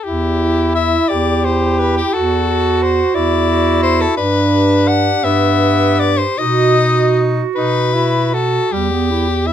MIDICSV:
0, 0, Header, 1, 5, 480
1, 0, Start_track
1, 0, Key_signature, 1, "minor"
1, 0, Tempo, 691244
1, 37, Time_signature, 6, 3, 24, 8
1, 3395, Tempo, 734394
1, 3875, Tempo, 777202
1, 5795, Tempo, 743494
1, 6309, End_track
2, 0, Start_track
2, 0, Title_t, "Soprano saxophone"
2, 0, Program_c, 0, 64
2, 26, Note_on_c, 0, 67, 59
2, 514, Note_off_c, 0, 67, 0
2, 518, Note_on_c, 0, 76, 65
2, 753, Note_on_c, 0, 74, 64
2, 763, Note_off_c, 0, 76, 0
2, 1005, Note_on_c, 0, 72, 55
2, 1015, Note_off_c, 0, 74, 0
2, 1242, Note_on_c, 0, 71, 62
2, 1252, Note_off_c, 0, 72, 0
2, 1362, Note_off_c, 0, 71, 0
2, 1366, Note_on_c, 0, 67, 61
2, 1482, Note_on_c, 0, 69, 58
2, 1492, Note_off_c, 0, 67, 0
2, 1961, Note_on_c, 0, 72, 63
2, 1972, Note_off_c, 0, 69, 0
2, 2185, Note_on_c, 0, 74, 66
2, 2195, Note_off_c, 0, 72, 0
2, 2655, Note_off_c, 0, 74, 0
2, 2659, Note_on_c, 0, 72, 80
2, 2785, Note_on_c, 0, 69, 67
2, 2796, Note_off_c, 0, 72, 0
2, 2893, Note_off_c, 0, 69, 0
2, 2897, Note_on_c, 0, 71, 71
2, 3385, Note_on_c, 0, 78, 85
2, 3396, Note_off_c, 0, 71, 0
2, 3623, Note_on_c, 0, 76, 71
2, 3632, Note_off_c, 0, 78, 0
2, 4105, Note_on_c, 0, 74, 74
2, 4114, Note_off_c, 0, 76, 0
2, 4217, Note_on_c, 0, 72, 65
2, 4226, Note_off_c, 0, 74, 0
2, 4343, Note_on_c, 0, 75, 72
2, 4352, Note_off_c, 0, 72, 0
2, 4880, Note_off_c, 0, 75, 0
2, 5067, Note_on_c, 0, 71, 73
2, 5552, Note_on_c, 0, 69, 63
2, 5561, Note_off_c, 0, 71, 0
2, 5790, Note_on_c, 0, 67, 61
2, 5800, Note_off_c, 0, 69, 0
2, 6271, Note_on_c, 0, 76, 63
2, 6281, Note_off_c, 0, 67, 0
2, 6309, Note_off_c, 0, 76, 0
2, 6309, End_track
3, 0, Start_track
3, 0, Title_t, "Clarinet"
3, 0, Program_c, 1, 71
3, 293, Note_on_c, 1, 64, 46
3, 995, Note_off_c, 1, 64, 0
3, 1007, Note_on_c, 1, 64, 41
3, 1478, Note_off_c, 1, 64, 0
3, 1494, Note_on_c, 1, 66, 45
3, 1722, Note_off_c, 1, 66, 0
3, 1732, Note_on_c, 1, 66, 49
3, 2419, Note_off_c, 1, 66, 0
3, 2431, Note_on_c, 1, 66, 53
3, 2896, Note_off_c, 1, 66, 0
3, 3150, Note_on_c, 1, 67, 54
3, 3861, Note_off_c, 1, 67, 0
3, 3879, Note_on_c, 1, 67, 52
3, 4339, Note_off_c, 1, 67, 0
3, 4345, Note_on_c, 1, 66, 48
3, 4581, Note_off_c, 1, 66, 0
3, 4585, Note_on_c, 1, 66, 46
3, 5296, Note_off_c, 1, 66, 0
3, 5304, Note_on_c, 1, 66, 38
3, 5779, Note_off_c, 1, 66, 0
3, 5787, Note_on_c, 1, 55, 46
3, 5910, Note_on_c, 1, 59, 46
3, 5920, Note_off_c, 1, 55, 0
3, 6035, Note_on_c, 1, 64, 44
3, 6045, Note_off_c, 1, 59, 0
3, 6149, Note_on_c, 1, 67, 43
3, 6159, Note_off_c, 1, 64, 0
3, 6265, Note_on_c, 1, 64, 46
3, 6274, Note_off_c, 1, 67, 0
3, 6309, Note_off_c, 1, 64, 0
3, 6309, End_track
4, 0, Start_track
4, 0, Title_t, "Tenor saxophone"
4, 0, Program_c, 2, 66
4, 24, Note_on_c, 2, 64, 52
4, 733, Note_off_c, 2, 64, 0
4, 762, Note_on_c, 2, 67, 61
4, 1483, Note_on_c, 2, 66, 60
4, 1493, Note_off_c, 2, 67, 0
4, 2182, Note_on_c, 2, 64, 64
4, 2193, Note_off_c, 2, 66, 0
4, 2889, Note_off_c, 2, 64, 0
4, 2894, Note_on_c, 2, 62, 72
4, 3625, Note_on_c, 2, 59, 68
4, 3635, Note_off_c, 2, 62, 0
4, 4237, Note_off_c, 2, 59, 0
4, 4342, Note_on_c, 2, 63, 62
4, 5007, Note_off_c, 2, 63, 0
4, 5062, Note_on_c, 2, 63, 60
4, 5307, Note_on_c, 2, 64, 53
4, 5316, Note_off_c, 2, 63, 0
4, 5549, Note_on_c, 2, 66, 46
4, 5558, Note_off_c, 2, 64, 0
4, 5790, Note_off_c, 2, 66, 0
4, 6309, End_track
5, 0, Start_track
5, 0, Title_t, "Bass clarinet"
5, 0, Program_c, 3, 71
5, 37, Note_on_c, 3, 40, 52
5, 683, Note_off_c, 3, 40, 0
5, 767, Note_on_c, 3, 40, 53
5, 1402, Note_off_c, 3, 40, 0
5, 1488, Note_on_c, 3, 40, 56
5, 2107, Note_off_c, 3, 40, 0
5, 2190, Note_on_c, 3, 40, 59
5, 2820, Note_off_c, 3, 40, 0
5, 2901, Note_on_c, 3, 43, 79
5, 3547, Note_off_c, 3, 43, 0
5, 3630, Note_on_c, 3, 43, 67
5, 4260, Note_off_c, 3, 43, 0
5, 4345, Note_on_c, 3, 47, 64
5, 4985, Note_off_c, 3, 47, 0
5, 5069, Note_on_c, 3, 47, 55
5, 5708, Note_off_c, 3, 47, 0
5, 5790, Note_on_c, 3, 40, 61
5, 6309, Note_off_c, 3, 40, 0
5, 6309, End_track
0, 0, End_of_file